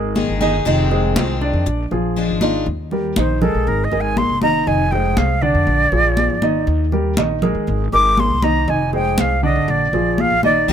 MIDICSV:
0, 0, Header, 1, 7, 480
1, 0, Start_track
1, 0, Key_signature, -3, "major"
1, 0, Tempo, 501253
1, 631, Time_signature, 4, 2, 24, 8
1, 10274, End_track
2, 0, Start_track
2, 0, Title_t, "Flute"
2, 0, Program_c, 0, 73
2, 3044, Note_on_c, 0, 72, 71
2, 3274, Note_on_c, 0, 69, 80
2, 3288, Note_off_c, 0, 72, 0
2, 3524, Note_on_c, 0, 70, 72
2, 3538, Note_off_c, 0, 69, 0
2, 3682, Note_on_c, 0, 75, 74
2, 3697, Note_off_c, 0, 70, 0
2, 3839, Note_on_c, 0, 80, 81
2, 3853, Note_off_c, 0, 75, 0
2, 4000, Note_on_c, 0, 84, 92
2, 4014, Note_off_c, 0, 80, 0
2, 4230, Note_off_c, 0, 84, 0
2, 4236, Note_on_c, 0, 82, 99
2, 4475, Note_on_c, 0, 80, 84
2, 4490, Note_off_c, 0, 82, 0
2, 4707, Note_on_c, 0, 79, 83
2, 4721, Note_off_c, 0, 80, 0
2, 4960, Note_on_c, 0, 77, 77
2, 4975, Note_off_c, 0, 79, 0
2, 5190, Note_on_c, 0, 74, 86
2, 5204, Note_off_c, 0, 77, 0
2, 6390, Note_off_c, 0, 74, 0
2, 7599, Note_on_c, 0, 86, 107
2, 7850, Note_on_c, 0, 84, 92
2, 7864, Note_off_c, 0, 86, 0
2, 8077, Note_on_c, 0, 82, 96
2, 8092, Note_off_c, 0, 84, 0
2, 8329, Note_on_c, 0, 80, 82
2, 8344, Note_off_c, 0, 82, 0
2, 8560, Note_off_c, 0, 80, 0
2, 8569, Note_on_c, 0, 79, 92
2, 8815, Note_on_c, 0, 77, 81
2, 8830, Note_off_c, 0, 79, 0
2, 9041, Note_off_c, 0, 77, 0
2, 9047, Note_on_c, 0, 75, 89
2, 9293, Note_on_c, 0, 74, 83
2, 9307, Note_off_c, 0, 75, 0
2, 9773, Note_on_c, 0, 77, 98
2, 9788, Note_off_c, 0, 74, 0
2, 9999, Note_off_c, 0, 77, 0
2, 10005, Note_on_c, 0, 74, 95
2, 10263, Note_off_c, 0, 74, 0
2, 10274, End_track
3, 0, Start_track
3, 0, Title_t, "Grand piano"
3, 0, Program_c, 1, 0
3, 0, Note_on_c, 1, 56, 67
3, 0, Note_on_c, 1, 68, 72
3, 0, Note_on_c, 1, 70, 70
3, 304, Note_off_c, 1, 56, 0
3, 305, Note_off_c, 1, 68, 0
3, 307, Note_off_c, 1, 70, 0
3, 391, Note_on_c, 1, 51, 85
3, 394, Note_on_c, 1, 63, 89
3, 397, Note_on_c, 1, 75, 89
3, 588, Note_off_c, 1, 51, 0
3, 589, Note_off_c, 1, 63, 0
3, 591, Note_off_c, 1, 75, 0
3, 633, Note_on_c, 1, 51, 75
3, 635, Note_on_c, 1, 63, 79
3, 637, Note_on_c, 1, 75, 74
3, 829, Note_off_c, 1, 51, 0
3, 830, Note_off_c, 1, 63, 0
3, 831, Note_off_c, 1, 75, 0
3, 871, Note_on_c, 1, 56, 72
3, 874, Note_on_c, 1, 68, 72
3, 877, Note_on_c, 1, 72, 72
3, 1264, Note_off_c, 1, 56, 0
3, 1266, Note_off_c, 1, 68, 0
3, 1268, Note_off_c, 1, 72, 0
3, 1353, Note_on_c, 1, 62, 84
3, 1357, Note_on_c, 1, 74, 84
3, 1746, Note_off_c, 1, 62, 0
3, 1748, Note_off_c, 1, 74, 0
3, 1833, Note_on_c, 1, 53, 66
3, 1834, Note_on_c, 1, 65, 71
3, 1837, Note_on_c, 1, 68, 69
3, 2226, Note_off_c, 1, 53, 0
3, 2227, Note_off_c, 1, 65, 0
3, 2228, Note_off_c, 1, 68, 0
3, 2311, Note_on_c, 1, 51, 79
3, 2313, Note_on_c, 1, 63, 83
3, 2316, Note_on_c, 1, 75, 79
3, 2508, Note_off_c, 1, 51, 0
3, 2509, Note_off_c, 1, 63, 0
3, 2511, Note_off_c, 1, 75, 0
3, 2793, Note_on_c, 1, 55, 72
3, 2797, Note_on_c, 1, 67, 69
3, 2801, Note_on_c, 1, 70, 71
3, 2989, Note_off_c, 1, 55, 0
3, 2991, Note_off_c, 1, 67, 0
3, 2994, Note_off_c, 1, 70, 0
3, 3030, Note_on_c, 1, 51, 78
3, 3034, Note_on_c, 1, 63, 72
3, 3036, Note_on_c, 1, 75, 73
3, 3227, Note_off_c, 1, 51, 0
3, 3230, Note_off_c, 1, 63, 0
3, 3231, Note_off_c, 1, 75, 0
3, 3268, Note_on_c, 1, 56, 76
3, 3272, Note_on_c, 1, 68, 76
3, 3275, Note_on_c, 1, 70, 76
3, 3663, Note_off_c, 1, 56, 0
3, 3665, Note_off_c, 1, 68, 0
3, 3667, Note_off_c, 1, 70, 0
3, 3751, Note_on_c, 1, 56, 69
3, 3754, Note_on_c, 1, 68, 70
3, 3758, Note_on_c, 1, 70, 69
3, 4145, Note_off_c, 1, 56, 0
3, 4146, Note_off_c, 1, 68, 0
3, 4149, Note_off_c, 1, 70, 0
3, 4232, Note_on_c, 1, 51, 79
3, 4233, Note_on_c, 1, 63, 84
3, 4237, Note_on_c, 1, 75, 84
3, 4429, Note_off_c, 1, 51, 0
3, 4429, Note_off_c, 1, 63, 0
3, 4431, Note_off_c, 1, 75, 0
3, 4466, Note_on_c, 1, 51, 79
3, 4472, Note_on_c, 1, 63, 72
3, 4474, Note_on_c, 1, 75, 73
3, 4665, Note_off_c, 1, 51, 0
3, 4668, Note_off_c, 1, 63, 0
3, 4670, Note_off_c, 1, 75, 0
3, 4713, Note_on_c, 1, 56, 73
3, 4715, Note_on_c, 1, 68, 69
3, 4718, Note_on_c, 1, 72, 72
3, 5106, Note_off_c, 1, 56, 0
3, 5107, Note_off_c, 1, 68, 0
3, 5109, Note_off_c, 1, 72, 0
3, 5192, Note_on_c, 1, 50, 84
3, 5196, Note_on_c, 1, 62, 91
3, 5196, Note_on_c, 1, 74, 90
3, 5585, Note_off_c, 1, 50, 0
3, 5587, Note_off_c, 1, 62, 0
3, 5587, Note_off_c, 1, 74, 0
3, 5670, Note_on_c, 1, 53, 68
3, 5673, Note_on_c, 1, 65, 68
3, 5676, Note_on_c, 1, 68, 68
3, 6064, Note_off_c, 1, 53, 0
3, 6066, Note_off_c, 1, 65, 0
3, 6067, Note_off_c, 1, 68, 0
3, 6150, Note_on_c, 1, 51, 84
3, 6154, Note_on_c, 1, 63, 84
3, 6157, Note_on_c, 1, 75, 83
3, 6544, Note_off_c, 1, 51, 0
3, 6546, Note_off_c, 1, 63, 0
3, 6548, Note_off_c, 1, 75, 0
3, 6630, Note_on_c, 1, 55, 73
3, 6632, Note_on_c, 1, 67, 74
3, 6637, Note_on_c, 1, 70, 72
3, 6827, Note_off_c, 1, 55, 0
3, 6828, Note_off_c, 1, 67, 0
3, 6831, Note_off_c, 1, 70, 0
3, 6870, Note_on_c, 1, 51, 83
3, 6873, Note_on_c, 1, 63, 79
3, 6874, Note_on_c, 1, 75, 79
3, 7067, Note_off_c, 1, 51, 0
3, 7069, Note_off_c, 1, 63, 0
3, 7070, Note_off_c, 1, 75, 0
3, 7108, Note_on_c, 1, 56, 73
3, 7111, Note_on_c, 1, 68, 77
3, 7114, Note_on_c, 1, 70, 75
3, 7502, Note_off_c, 1, 56, 0
3, 7504, Note_off_c, 1, 68, 0
3, 7506, Note_off_c, 1, 70, 0
3, 7591, Note_on_c, 1, 56, 70
3, 7594, Note_on_c, 1, 68, 69
3, 7597, Note_on_c, 1, 70, 73
3, 7984, Note_off_c, 1, 56, 0
3, 7986, Note_off_c, 1, 68, 0
3, 7988, Note_off_c, 1, 70, 0
3, 8070, Note_on_c, 1, 51, 83
3, 8072, Note_on_c, 1, 63, 84
3, 8076, Note_on_c, 1, 75, 82
3, 8267, Note_off_c, 1, 51, 0
3, 8268, Note_off_c, 1, 63, 0
3, 8270, Note_off_c, 1, 75, 0
3, 8308, Note_on_c, 1, 51, 74
3, 8311, Note_on_c, 1, 63, 77
3, 8313, Note_on_c, 1, 75, 73
3, 8506, Note_off_c, 1, 51, 0
3, 8507, Note_off_c, 1, 63, 0
3, 8509, Note_off_c, 1, 75, 0
3, 8550, Note_on_c, 1, 56, 69
3, 8554, Note_on_c, 1, 68, 70
3, 8557, Note_on_c, 1, 72, 75
3, 8944, Note_off_c, 1, 56, 0
3, 8946, Note_off_c, 1, 68, 0
3, 8948, Note_off_c, 1, 72, 0
3, 9030, Note_on_c, 1, 50, 91
3, 9033, Note_on_c, 1, 62, 86
3, 9036, Note_on_c, 1, 74, 82
3, 9424, Note_off_c, 1, 50, 0
3, 9425, Note_off_c, 1, 62, 0
3, 9427, Note_off_c, 1, 74, 0
3, 9513, Note_on_c, 1, 53, 72
3, 9516, Note_on_c, 1, 65, 69
3, 9519, Note_on_c, 1, 68, 69
3, 9906, Note_off_c, 1, 53, 0
3, 9908, Note_off_c, 1, 65, 0
3, 9909, Note_off_c, 1, 68, 0
3, 9993, Note_on_c, 1, 51, 80
3, 9997, Note_on_c, 1, 63, 85
3, 10000, Note_on_c, 1, 75, 88
3, 10274, Note_off_c, 1, 51, 0
3, 10274, Note_off_c, 1, 63, 0
3, 10274, Note_off_c, 1, 75, 0
3, 10274, End_track
4, 0, Start_track
4, 0, Title_t, "Steel-string acoustic guitar"
4, 0, Program_c, 2, 25
4, 147, Note_on_c, 2, 51, 48
4, 153, Note_on_c, 2, 56, 52
4, 158, Note_on_c, 2, 63, 55
4, 163, Note_on_c, 2, 68, 55
4, 377, Note_off_c, 2, 68, 0
4, 379, Note_off_c, 2, 51, 0
4, 382, Note_off_c, 2, 56, 0
4, 385, Note_off_c, 2, 63, 0
4, 388, Note_on_c, 2, 68, 67
4, 398, Note_on_c, 2, 63, 57
4, 406, Note_on_c, 2, 56, 53
4, 620, Note_off_c, 2, 68, 0
4, 624, Note_off_c, 2, 56, 0
4, 625, Note_off_c, 2, 63, 0
4, 625, Note_on_c, 2, 48, 73
4, 632, Note_on_c, 2, 51, 66
4, 636, Note_on_c, 2, 56, 72
4, 640, Note_on_c, 2, 60, 82
4, 642, Note_on_c, 2, 65, 75
4, 1098, Note_off_c, 2, 48, 0
4, 1098, Note_off_c, 2, 51, 0
4, 1104, Note_off_c, 2, 56, 0
4, 1106, Note_off_c, 2, 60, 0
4, 1107, Note_off_c, 2, 65, 0
4, 1110, Note_on_c, 2, 51, 49
4, 1116, Note_on_c, 2, 56, 44
4, 1122, Note_on_c, 2, 60, 53
4, 1127, Note_on_c, 2, 65, 47
4, 1581, Note_off_c, 2, 51, 0
4, 1584, Note_off_c, 2, 56, 0
4, 1587, Note_off_c, 2, 60, 0
4, 1589, Note_off_c, 2, 65, 0
4, 2073, Note_on_c, 2, 53, 44
4, 2079, Note_on_c, 2, 56, 46
4, 2084, Note_on_c, 2, 62, 48
4, 2090, Note_on_c, 2, 65, 54
4, 2301, Note_off_c, 2, 65, 0
4, 2302, Note_off_c, 2, 53, 0
4, 2305, Note_off_c, 2, 56, 0
4, 2308, Note_off_c, 2, 62, 0
4, 2312, Note_on_c, 2, 65, 64
4, 2318, Note_on_c, 2, 62, 58
4, 2328, Note_on_c, 2, 56, 50
4, 2542, Note_off_c, 2, 65, 0
4, 2545, Note_off_c, 2, 62, 0
4, 2550, Note_off_c, 2, 56, 0
4, 10230, Note_on_c, 2, 51, 74
4, 10234, Note_on_c, 2, 55, 74
4, 10239, Note_on_c, 2, 58, 78
4, 10244, Note_on_c, 2, 63, 73
4, 10274, Note_off_c, 2, 51, 0
4, 10274, Note_off_c, 2, 55, 0
4, 10274, Note_off_c, 2, 58, 0
4, 10274, Note_off_c, 2, 63, 0
4, 10274, End_track
5, 0, Start_track
5, 0, Title_t, "Upright bass"
5, 0, Program_c, 3, 32
5, 0, Note_on_c, 3, 32, 82
5, 252, Note_off_c, 3, 32, 0
5, 270, Note_on_c, 3, 31, 77
5, 613, Note_off_c, 3, 31, 0
5, 628, Note_on_c, 3, 29, 100
5, 1086, Note_off_c, 3, 29, 0
5, 1113, Note_on_c, 3, 36, 84
5, 1454, Note_off_c, 3, 36, 0
5, 1469, Note_on_c, 3, 41, 84
5, 1584, Note_off_c, 3, 41, 0
5, 1590, Note_on_c, 3, 34, 96
5, 1818, Note_off_c, 3, 34, 0
5, 1834, Note_on_c, 3, 34, 77
5, 2174, Note_off_c, 3, 34, 0
5, 2190, Note_on_c, 3, 32, 70
5, 2533, Note_off_c, 3, 32, 0
5, 2552, Note_on_c, 3, 39, 94
5, 3008, Note_off_c, 3, 39, 0
5, 3033, Note_on_c, 3, 34, 87
5, 3374, Note_off_c, 3, 34, 0
5, 3395, Note_on_c, 3, 34, 80
5, 3507, Note_off_c, 3, 34, 0
5, 3515, Note_on_c, 3, 32, 99
5, 3741, Note_off_c, 3, 32, 0
5, 3757, Note_on_c, 3, 32, 85
5, 4096, Note_off_c, 3, 32, 0
5, 4111, Note_on_c, 3, 29, 76
5, 4453, Note_off_c, 3, 29, 0
5, 4473, Note_on_c, 3, 29, 99
5, 4928, Note_off_c, 3, 29, 0
5, 4952, Note_on_c, 3, 36, 84
5, 5293, Note_off_c, 3, 36, 0
5, 5309, Note_on_c, 3, 41, 84
5, 5421, Note_off_c, 3, 41, 0
5, 5427, Note_on_c, 3, 34, 98
5, 5657, Note_off_c, 3, 34, 0
5, 5670, Note_on_c, 3, 34, 86
5, 6012, Note_off_c, 3, 34, 0
5, 6030, Note_on_c, 3, 32, 75
5, 6372, Note_off_c, 3, 32, 0
5, 6388, Note_on_c, 3, 39, 101
5, 6845, Note_off_c, 3, 39, 0
5, 6866, Note_on_c, 3, 34, 88
5, 7210, Note_off_c, 3, 34, 0
5, 7227, Note_on_c, 3, 51, 79
5, 7343, Note_off_c, 3, 51, 0
5, 7353, Note_on_c, 3, 32, 100
5, 7580, Note_off_c, 3, 32, 0
5, 7591, Note_on_c, 3, 32, 84
5, 7933, Note_off_c, 3, 32, 0
5, 7949, Note_on_c, 3, 36, 75
5, 8292, Note_off_c, 3, 36, 0
5, 8310, Note_on_c, 3, 29, 103
5, 8766, Note_off_c, 3, 29, 0
5, 8791, Note_on_c, 3, 36, 87
5, 9133, Note_off_c, 3, 36, 0
5, 9153, Note_on_c, 3, 32, 77
5, 9266, Note_off_c, 3, 32, 0
5, 9271, Note_on_c, 3, 34, 103
5, 9499, Note_off_c, 3, 34, 0
5, 9509, Note_on_c, 3, 34, 84
5, 9852, Note_off_c, 3, 34, 0
5, 9867, Note_on_c, 3, 34, 74
5, 10211, Note_off_c, 3, 34, 0
5, 10227, Note_on_c, 3, 39, 98
5, 10274, Note_off_c, 3, 39, 0
5, 10274, End_track
6, 0, Start_track
6, 0, Title_t, "Muted steel-string acoustic guitar strokes"
6, 1591, Note_on_c, 9, 29, 60
6, 1687, Note_off_c, 9, 29, 0
6, 10274, End_track
7, 0, Start_track
7, 0, Title_t, "Drums"
7, 152, Note_on_c, 9, 63, 78
7, 248, Note_off_c, 9, 63, 0
7, 391, Note_on_c, 9, 63, 62
7, 487, Note_off_c, 9, 63, 0
7, 633, Note_on_c, 9, 63, 33
7, 729, Note_off_c, 9, 63, 0
7, 872, Note_on_c, 9, 63, 30
7, 968, Note_off_c, 9, 63, 0
7, 1112, Note_on_c, 9, 63, 101
7, 1207, Note_off_c, 9, 63, 0
7, 1354, Note_on_c, 9, 63, 33
7, 1450, Note_off_c, 9, 63, 0
7, 1592, Note_on_c, 9, 63, 34
7, 1688, Note_off_c, 9, 63, 0
7, 1831, Note_on_c, 9, 63, 36
7, 1927, Note_off_c, 9, 63, 0
7, 2071, Note_on_c, 9, 63, 32
7, 2167, Note_off_c, 9, 63, 0
7, 2308, Note_on_c, 9, 63, 75
7, 2403, Note_off_c, 9, 63, 0
7, 2549, Note_on_c, 9, 63, 33
7, 2645, Note_off_c, 9, 63, 0
7, 2790, Note_on_c, 9, 63, 29
7, 2885, Note_off_c, 9, 63, 0
7, 3029, Note_on_c, 9, 63, 94
7, 3125, Note_off_c, 9, 63, 0
7, 3271, Note_on_c, 9, 63, 32
7, 3271, Note_on_c, 9, 64, 71
7, 3367, Note_off_c, 9, 63, 0
7, 3367, Note_off_c, 9, 64, 0
7, 3512, Note_on_c, 9, 63, 34
7, 3608, Note_off_c, 9, 63, 0
7, 3749, Note_on_c, 9, 63, 35
7, 3845, Note_off_c, 9, 63, 0
7, 3991, Note_on_c, 9, 63, 85
7, 4086, Note_off_c, 9, 63, 0
7, 4228, Note_on_c, 9, 63, 77
7, 4324, Note_off_c, 9, 63, 0
7, 4471, Note_on_c, 9, 63, 36
7, 4566, Note_off_c, 9, 63, 0
7, 4713, Note_on_c, 9, 63, 30
7, 4809, Note_off_c, 9, 63, 0
7, 4949, Note_on_c, 9, 63, 93
7, 5045, Note_off_c, 9, 63, 0
7, 5428, Note_on_c, 9, 63, 34
7, 5524, Note_off_c, 9, 63, 0
7, 5668, Note_on_c, 9, 63, 35
7, 5764, Note_off_c, 9, 63, 0
7, 5908, Note_on_c, 9, 63, 76
7, 6003, Note_off_c, 9, 63, 0
7, 6148, Note_on_c, 9, 63, 71
7, 6244, Note_off_c, 9, 63, 0
7, 6388, Note_on_c, 9, 63, 34
7, 6484, Note_off_c, 9, 63, 0
7, 6629, Note_on_c, 9, 63, 30
7, 6725, Note_off_c, 9, 63, 0
7, 6866, Note_on_c, 9, 63, 102
7, 6962, Note_off_c, 9, 63, 0
7, 7106, Note_on_c, 9, 63, 32
7, 7106, Note_on_c, 9, 64, 76
7, 7202, Note_off_c, 9, 63, 0
7, 7202, Note_off_c, 9, 64, 0
7, 7346, Note_on_c, 9, 63, 34
7, 7442, Note_off_c, 9, 63, 0
7, 7587, Note_on_c, 9, 63, 36
7, 7683, Note_off_c, 9, 63, 0
7, 7829, Note_on_c, 9, 63, 78
7, 7925, Note_off_c, 9, 63, 0
7, 8067, Note_on_c, 9, 63, 80
7, 8163, Note_off_c, 9, 63, 0
7, 8309, Note_on_c, 9, 63, 33
7, 8405, Note_off_c, 9, 63, 0
7, 8551, Note_on_c, 9, 63, 32
7, 8647, Note_off_c, 9, 63, 0
7, 8788, Note_on_c, 9, 63, 94
7, 8884, Note_off_c, 9, 63, 0
7, 9269, Note_on_c, 9, 63, 34
7, 9365, Note_off_c, 9, 63, 0
7, 9510, Note_on_c, 9, 63, 35
7, 9606, Note_off_c, 9, 63, 0
7, 9750, Note_on_c, 9, 63, 78
7, 9846, Note_off_c, 9, 63, 0
7, 9989, Note_on_c, 9, 63, 75
7, 10085, Note_off_c, 9, 63, 0
7, 10232, Note_on_c, 9, 63, 36
7, 10274, Note_off_c, 9, 63, 0
7, 10274, End_track
0, 0, End_of_file